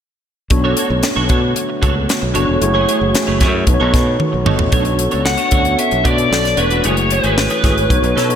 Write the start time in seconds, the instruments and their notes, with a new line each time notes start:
0.50 fingered electric bass B1, analog synth pad D3 A3 B3 F#4 C#5, tine electric piano B3 D4 F#4 A4 C#5, muted clean electric guitar stroke, kick, closed hi-hat
0.64 clean electric guitar D4 F#4 A4 C#5
0.77 clean electric guitar D4 F#4 A4 C#5, closed hi-hat
0.90 fingered electric bass B1, muted clean electric guitar stroke
1.03 muted clean electric guitar stroke, snare, closed hi-hat
1.16 fingered electric bass B1, clean electric guitar D4 F#4 A4 C#5
1.29 fingered electric bass B2, clean electric guitar D4 F#4 A4 C#5, kick, closed hi-hat
1.41 muted clean electric guitar stroke
1.56 closed hi-hat
1.69 muted clean electric guitar stroke
1.82 fingered electric bass C#2, clean electric guitar D4 F#4 A4 C#5, kick, closed hi-hat
1.95 muted clean electric guitar stroke
2.08 muted clean electric guitar stroke, snare, closed hi-hat
2.22 fingered electric bass B1, muted clean electric guitar stroke
2.34 fingered electric bass F#1, tine electric piano B3 D4 F#4 A4 C#5, clean electric guitar D4 F#4 A4 C#5, closed hi-hat
2.48 fingered electric bass E1, muted clean electric guitar stroke
2.61 fingered electric bass F#1, analog synth pad E3 A3 G#4, tine electric piano A3 E4 F#4 G#4 C#5, muted clean electric guitar stroke, closed hi-hat
2.74 clean electric guitar A3 E4 G#4 C#5
2.88 clean electric guitar A3 E4 G#4 C#5, closed hi-hat
3.00 fingered electric bass F#1, muted clean electric guitar stroke
3.14 muted clean electric guitar stroke, snare, closed hi-hat
3.27 fingered electric bass F#1, clean electric guitar A3 E4 G#4 C#5
3.40 fingered electric bass F#2, clean electric guitar A3 E4 G#4 C#5, kick, snare, closed hi-hat
3.53 muted clean electric guitar stroke
3.66 fingered electric bass B1, analog synth pad D#3 B3, tine electric piano B3 D#4 F#4 A4 B4, muted clean electric guitar stroke, kick, closed hi-hat
3.74 tine electric piano C#5
3.80 fingered electric bass B1, clean electric guitar B3 D#4 A4 C#5
3.93 fingered electric bass B2, muted clean electric guitar stroke, kick, snare, closed hi-hat
4.06 muted clean electric guitar stroke
4.19 tine electric piano F#4 B4, muted clean electric guitar stroke, high tom
4.32 fingered electric bass B1, muted clean electric guitar stroke
4.46 fingered electric bass G1, clean electric guitar B3 D#4 A4 C#5, tine electric piano A4 D#5, mid tom
4.59 fingered electric bass A1, tine electric piano F#4 C#5, muted clean electric guitar stroke, floor tom
4.72 fingered electric bass B1, clean electric guitar A3 D4 F#4 C#5, tine electric piano B3 D4 F#4 A4 C#5, kick, closed hi-hat
4.85 muted clean electric guitar stroke, closed hi-hat
4.98 muted clean electric guitar stroke, closed hi-hat
5.11 fingered electric bass C#2, clean electric guitar A3 D4 F#4 C#5, closed hi-hat
5.24 lead electric guitar F#5, muted clean electric guitar stroke, snare
5.37 clean electric guitar A3 D4 F#4 C#5, closed hi-hat
5.51 fingered electric bass D2, clean electric guitar A3 D4 F#4 C#5, tine electric piano B3 C#4 F#4 A4 C#5, kick, closed hi-hat
5.59 tine electric piano D4
5.65 muted clean electric guitar stroke, closed hi-hat
5.78 lead electric guitar E5, muted clean electric guitar stroke, closed hi-hat
5.91 fingered electric bass B1, muted clean electric guitar stroke, closed hi-hat
6.04 fingered electric bass B2, clean electric guitar A3 D4 F#4 C#5, lead electric guitar D5, kick, closed hi-hat
6.18 tine electric piano B3 D4 F#4 A4 D5, muted clean electric guitar stroke, closed hi-hat
6.30 fingered electric bass B1, muted clean electric guitar stroke, snare
6.44 muted clean electric guitar stroke, snare, closed hi-hat
6.57 fingered electric bass E1, clean electric guitar A3 D4 F#4 C#5, lead electric guitar B4, closed hi-hat
6.70 clean electric guitar A3 D4 F#4 D5, closed hi-hat
6.84 fingered electric bass F#1, clean electric guitar E3 A3 C#4 G#4, tine electric piano G#3 E4 F#4 G#4 C#5, lead electric guitar C#5, closed hi-hat
6.90 tine electric piano A3
6.97 muted clean electric guitar stroke, closed hi-hat
7.10 lead electric guitar B4, muted clean electric guitar stroke, closed hi-hat
7.24 fingered electric bass G#1, clean electric guitar E3 A3 C#4 G#4, closed hi-hat
7.37 muted clean electric guitar stroke, snare
7.50 clean electric guitar E3 A3 C#4 G#4, closed hi-hat
7.63 fingered electric bass G#1, clean electric guitar E3 A3 C#4 G#4, tine electric piano A3 E4 F#4 G#4 C#5, kick, snare, closed hi-hat
7.77 muted clean electric guitar stroke, closed hi-hat
7.89 fingered electric bass B1, tine electric piano B3 D#4 F#4 A4 C#5, muted clean electric guitar stroke, kick, closed hi-hat
8.03 fingered electric bass B1, muted clean electric guitar stroke, closed hi-hat
8.15 fingered electric bass B2, clean electric guitar F#3 C#4 D#4 A4, snare, closed hi-hat
8.29 tine electric piano B3 D#4 F#4 A4 C#5, muted clean electric guitar stroke, closed hi-hat